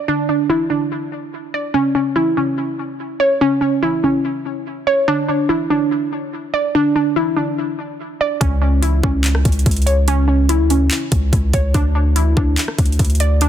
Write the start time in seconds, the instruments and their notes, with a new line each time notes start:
Already playing: synth pluck D5
0.08 synth pluck D4
0.29 synth pluck D4
0.50 synth pluck E4
0.70 synth pluck D4
1.54 synth pluck D5
1.74 synth pluck C#4
1.95 synth pluck C#4
2.16 synth pluck E4
2.37 synth pluck C#4
3.20 synth pluck C#5
3.41 synth pluck C#4
3.61 synth pluck C#4
3.83 synth pluck E4
4.04 synth pluck C#4
4.87 synth pluck C#5
5.08 synth pluck D4
5.28 synth pluck D4
5.49 synth pluck E4
5.70 synth pluck D4
6.54 synth pluck D5
6.75 synth pluck D4
6.96 synth pluck D4
7.16 synth pluck E4
7.36 synth pluck D4
8.21 synth pluck D5
8.41 808-style bass C#2, synth pluck C#4, kick, closed hi-hat
8.62 synth pluck C#4
8.82 synth pluck E4, closed hi-hat
9.03 808-style bass C#2, synth pluck C#4, kick
9.24 clap, closed hi-hat
9.35 cross-stick
9.45 808-style bass C#2, kick, closed hi-hat
9.52 closed hi-hat
9.59 closed hi-hat
9.66 808-style bass C#2, kick, closed hi-hat
9.71 closed hi-hat
9.76 closed hi-hat
9.82 closed hi-hat
9.86 synth pluck C#5, closed hi-hat
10.08 synth pluck C#4, closed hi-hat
10.28 synth pluck C#4
10.49 synth pluck E4, closed hi-hat
10.60 808-style bass D2
10.70 synth pluck C#4, closed hi-hat
10.91 clap, closed hi-hat
11.12 808-style bass C#2, kick, closed hi-hat
11.33 808-style bass C#2, kick, closed hi-hat
11.53 808-style bass C#2, synth pluck C#5, kick, closed hi-hat
11.74 808-style bass D2, synth pluck D4, kick, closed hi-hat
11.95 synth pluck D4
12.16 synth pluck E4, closed hi-hat
12.37 808-style bass D2, synth pluck D4, kick
12.58 clap, closed hi-hat
12.68 cross-stick
12.78 808-style bass D2, kick, closed hi-hat
12.86 closed hi-hat
12.92 closed hi-hat
12.99 808-style bass D2, kick, closed hi-hat
13.05 closed hi-hat
13.10 closed hi-hat
13.15 closed hi-hat
13.20 synth pluck D5, closed hi-hat
13.41 synth pluck D4, closed hi-hat